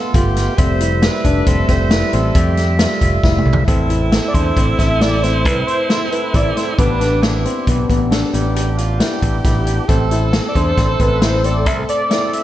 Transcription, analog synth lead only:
0, 0, Header, 1, 2, 480
1, 0, Start_track
1, 0, Key_signature, 0, "minor"
1, 0, Tempo, 443131
1, 634, Time_signature, 7, 2, 24, 8
1, 13469, End_track
2, 0, Start_track
2, 0, Title_t, "Analog synth lead"
2, 0, Program_c, 0, 81
2, 4633, Note_on_c, 0, 74, 73
2, 4701, Note_on_c, 0, 72, 89
2, 4717, Note_off_c, 0, 74, 0
2, 5180, Note_off_c, 0, 72, 0
2, 5187, Note_on_c, 0, 76, 87
2, 5429, Note_on_c, 0, 74, 97
2, 5446, Note_off_c, 0, 76, 0
2, 5668, Note_on_c, 0, 72, 86
2, 5684, Note_off_c, 0, 74, 0
2, 5904, Note_on_c, 0, 71, 89
2, 5920, Note_off_c, 0, 72, 0
2, 6136, Note_off_c, 0, 71, 0
2, 6143, Note_on_c, 0, 72, 87
2, 6592, Note_off_c, 0, 72, 0
2, 6624, Note_on_c, 0, 71, 74
2, 6877, Note_on_c, 0, 74, 86
2, 6893, Note_off_c, 0, 71, 0
2, 7110, Note_off_c, 0, 74, 0
2, 7116, Note_on_c, 0, 72, 66
2, 7222, Note_off_c, 0, 72, 0
2, 7350, Note_on_c, 0, 71, 88
2, 7796, Note_off_c, 0, 71, 0
2, 11356, Note_on_c, 0, 74, 64
2, 11433, Note_on_c, 0, 72, 92
2, 11449, Note_off_c, 0, 74, 0
2, 11923, Note_on_c, 0, 71, 82
2, 11939, Note_off_c, 0, 72, 0
2, 12158, Note_on_c, 0, 72, 84
2, 12174, Note_off_c, 0, 71, 0
2, 12403, Note_on_c, 0, 74, 81
2, 12419, Note_off_c, 0, 72, 0
2, 12636, Note_off_c, 0, 74, 0
2, 12643, Note_on_c, 0, 76, 108
2, 12750, Note_off_c, 0, 76, 0
2, 12883, Note_on_c, 0, 74, 94
2, 13328, Note_off_c, 0, 74, 0
2, 13360, Note_on_c, 0, 76, 95
2, 13469, Note_off_c, 0, 76, 0
2, 13469, End_track
0, 0, End_of_file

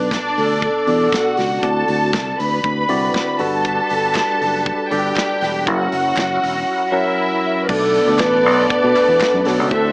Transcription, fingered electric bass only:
0, 0, Header, 1, 2, 480
1, 0, Start_track
1, 0, Key_signature, 2, "minor"
1, 0, Tempo, 505051
1, 1551, Time_signature, 4, 2, 24, 8
1, 9430, End_track
2, 0, Start_track
2, 0, Title_t, "Fingered electric bass"
2, 0, Program_c, 0, 33
2, 0, Note_on_c, 0, 35, 92
2, 149, Note_off_c, 0, 35, 0
2, 359, Note_on_c, 0, 38, 88
2, 631, Note_off_c, 0, 38, 0
2, 835, Note_on_c, 0, 40, 82
2, 1017, Note_off_c, 0, 40, 0
2, 1319, Note_on_c, 0, 37, 88
2, 1499, Note_off_c, 0, 37, 0
2, 1552, Note_on_c, 0, 38, 93
2, 1735, Note_off_c, 0, 38, 0
2, 1795, Note_on_c, 0, 38, 102
2, 2030, Note_on_c, 0, 36, 75
2, 2045, Note_off_c, 0, 38, 0
2, 2214, Note_off_c, 0, 36, 0
2, 2281, Note_on_c, 0, 38, 78
2, 2460, Note_off_c, 0, 38, 0
2, 2514, Note_on_c, 0, 38, 93
2, 2696, Note_off_c, 0, 38, 0
2, 2759, Note_on_c, 0, 36, 88
2, 2939, Note_off_c, 0, 36, 0
2, 3240, Note_on_c, 0, 31, 100
2, 3603, Note_off_c, 0, 31, 0
2, 3716, Note_on_c, 0, 31, 95
2, 3989, Note_off_c, 0, 31, 0
2, 4197, Note_on_c, 0, 30, 88
2, 4469, Note_off_c, 0, 30, 0
2, 4675, Note_on_c, 0, 31, 86
2, 4857, Note_off_c, 0, 31, 0
2, 5153, Note_on_c, 0, 28, 95
2, 5395, Note_off_c, 0, 28, 0
2, 5395, Note_on_c, 0, 30, 95
2, 5576, Note_off_c, 0, 30, 0
2, 5635, Note_on_c, 0, 30, 92
2, 5816, Note_off_c, 0, 30, 0
2, 5872, Note_on_c, 0, 30, 90
2, 6055, Note_off_c, 0, 30, 0
2, 6116, Note_on_c, 0, 28, 92
2, 6297, Note_off_c, 0, 28, 0
2, 7313, Note_on_c, 0, 35, 99
2, 7587, Note_off_c, 0, 35, 0
2, 7676, Note_on_c, 0, 38, 88
2, 7765, Note_off_c, 0, 38, 0
2, 7792, Note_on_c, 0, 33, 84
2, 8039, Note_off_c, 0, 33, 0
2, 8039, Note_on_c, 0, 35, 96
2, 8219, Note_off_c, 0, 35, 0
2, 8400, Note_on_c, 0, 47, 108
2, 8488, Note_off_c, 0, 47, 0
2, 8633, Note_on_c, 0, 40, 89
2, 8724, Note_off_c, 0, 40, 0
2, 8876, Note_on_c, 0, 42, 100
2, 8966, Note_off_c, 0, 42, 0
2, 8997, Note_on_c, 0, 35, 109
2, 9119, Note_off_c, 0, 35, 0
2, 9119, Note_on_c, 0, 37, 85
2, 9208, Note_off_c, 0, 37, 0
2, 9234, Note_on_c, 0, 38, 113
2, 9430, Note_off_c, 0, 38, 0
2, 9430, End_track
0, 0, End_of_file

